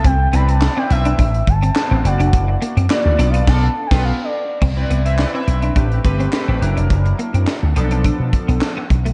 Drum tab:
CC |----------------|--------x--x----|x---------------|----------------|
HH |x-xx--xxxxxx--xx|x-xx--xx--------|--xx--xxxxxx--xx|xxxx--xxx-xx--xx|
CP |----x-------x---|----x-----------|----x-------x---|----x-------x---|
SD |----o-------o---|----o---o--o----|----o-------o---|----o-------o---|
BD |o-------o-o-----|o-------o--o----|o-------o-o-----|o-------o-o---o-|